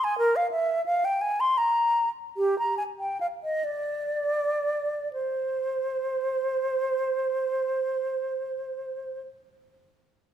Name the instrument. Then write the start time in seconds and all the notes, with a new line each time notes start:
flute
0.04 G#5
0.18 A#4
0.36 F5
0.51 E5
0.86 F5
1.05 G5
1.21 G#5
1.40 C6
1.58 A#5
2.37 G4
2.59 A#5
2.77 G#5
3.00 G5
3.21 F5
3.44 D#5
3.64 D5
5.13 C5